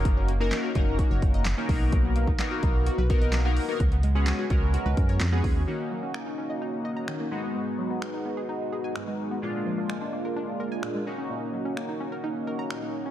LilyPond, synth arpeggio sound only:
\new Staff \with { instrumentName = "Synth arpeggio sound" } { \time 4/4 \key ees \minor \tempo 4 = 128 ges16 des'16 bes16 ees'16 des'16 ges'16 ees'16 r16 ges'16 des''16 r16 ees''16 r16 des'16 r8 | fis16 b16 ais16 dis'16 b16 fis'16 dis'16 r16 fis'16 b'16 r16 dis''16 r16 b16 r8 | ges16 ces'16 aes16 des'16 ces'16 ges'16 des'16 r16 ges'16 ces''16 r16 des''16 r16 ces'16 r8 | ees16 r16 ges16 des'16 bes16 ees'16 des'16 ees''16 ees'16 r16 ees''16 bes''16 ees16 bes16 r16 ces'16 |
aes,16 r16 ges16 ces'16 aes16 ees'16 ces'16 aes'16 ees'16 r16 aes'16 aes''16 aes,16 aes16 r16 ces'16 | bes,16 r16 f16 bes16 aes16 d'16 bes16 bes'16 d'16 r16 bes'16 aes''16 bes,16 aes16 r16 des'16 | bes,16 r16 ges16 des'16 bes16 ees'16 des'16 bes'16 ees'16 r16 bes'16 bes''16 bes,16 bes16 r16 des'16 | }